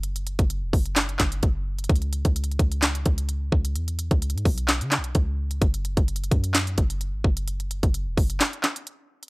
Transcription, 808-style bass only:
\new Staff \with { instrumentName = "808-style bass" } { \clef bass \time 4/4 \key cis \minor \tempo 4 = 129 fis,,8. fis,,8 e,,16 fis,,4 fis,,8 fis,,4 | cis,8. cis,8. cis,4 cis,4 cis,8 | e,8. cis,8 gis,16 b,,8. cis16. b,,16. cis,4 | fis,,8. fis,,8. fis,4 fis,,8. gis,,16 fis,,8~ |
fis,,8. fis,,8 e,,16 fis,,8 r2 | }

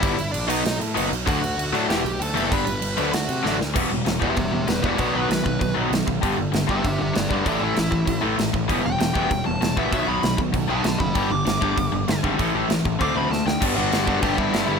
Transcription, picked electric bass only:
\new Staff \with { instrumentName = "Picked electric bass" } { \clef bass \time 4/4 \key e \minor \tempo 4 = 195 g,,8 g,,8 ais,,8 b,,8 b,,8 a,8 fis,,8 b,,8 | d,8 d,8 d,8 a,8 e,,8 b,,8 d,8 fis,,8 | g,,8 g,,8 g,,8 d,8 d,8 c8 a,,8 d,8 | e,,8 e,,8 e,,8 e,,8 e,,8 e,,8 e,,8 e,,8 |
b,,8 b,,8 b,,8 b,,8 b,,8 b,,8 b,,8 b,,8 | g,,8 g,,8 g,,8 g,,8 g,,8 g,,8 g,,8 g,,8 | a,,8 a,,8 a,,8 a,,8 a,,8 a,,8 a,,8 a,,8 | e,,8 e,,8 e,,8 e,,8 e,,8 e,,8 e,,8 ais,,8 |
b,,8 b,,8 b,,8 b,,8 b,,8 b,,8 b,,8 fis,,8 | g,,8 g,,8 g,,8 g,,8 g,,8 g,,8 g,,8 gis,,8 | a,,8 a,,8 a,,8 a,,8 d,8 d,8 d,8 d,8 | \key g \major g,,8 g,,8 g,,8 g,,8 g,,8 g,,8 g,,8 g,,8 | }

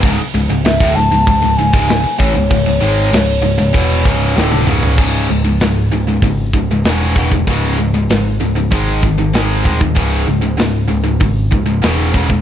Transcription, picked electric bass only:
\new Staff \with { instrumentName = "Picked electric bass" } { \clef bass \time 4/4 \key cis \minor \tempo 4 = 96 cis,,16 r16 cis,,16 cis,,16 cis,,16 d,,16 cis,,16 cis,,16 cis,,16 cis,,16 cis,,16 cis,,16 cis,,16 r16 a,,16 cis,,16 | cis,,16 cis,,16 gis,,8 cis,,8 cis,,16 cis,,16 e,,8 cis,,8 d,,8 cis,,8 | cis,,8 cis,,8 cis,,8 cis,,8 gis,,8 cis,,8 e,,8 e,,8 | cis,,4 gis,,8 cis,,8 gis,,8 gis,,8 gis,,8 dis,,8 |
cis,,8 cis,,8 cis,,8 cis,,8 gis,,8 cis,,8 e,,8 e,,8 | }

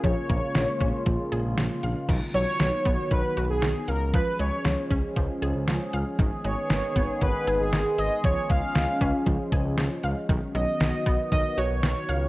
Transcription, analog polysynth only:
\new Staff \with { instrumentName = "Analog polysynth" } { \time 4/4 \key des \mixolydian \tempo 4 = 117 des''2. r4 | r8 des''4. ces''8. aes'8. bes'8 | ces''8 des''4 r2 r8 | r8 des''4. ces''8. aes'8. ees''8 |
des''8 f''2 r4. | r8 ees''4. ees''8 des''8 des''4 | }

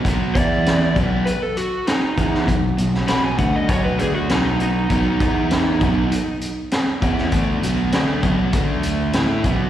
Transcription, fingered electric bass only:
\new Staff \with { instrumentName = "Fingered electric bass" } { \clef bass \time 4/4 \key e \major \tempo 4 = 99 b,,8 e,4 b,,8 r4. e,8 | b,,8 b,,8 b,,8 d,8 b,,8 d,8 b,,4 | b,,8 e,4 b,,8 r4. e,8 | d,8 b,,8 d,8 b,,8 d,4 a,8 b,,8 | }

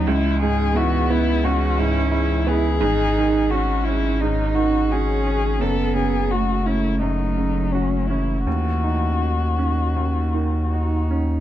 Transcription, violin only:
\new Staff \with { instrumentName = "Violin" } { \time 4/4 \key cis \minor \tempo 4 = 86 e'8 gis'8 fis'8 e'8 fis'8 e'8 e'8 gis'8~ | gis'4 fis'8 e'8 dis'8 fis'8 gis'4 | a'8 gis'8 fis'8 e'8 dis'4 cis'8 e'8 | fis'2.~ fis'8 r8 | }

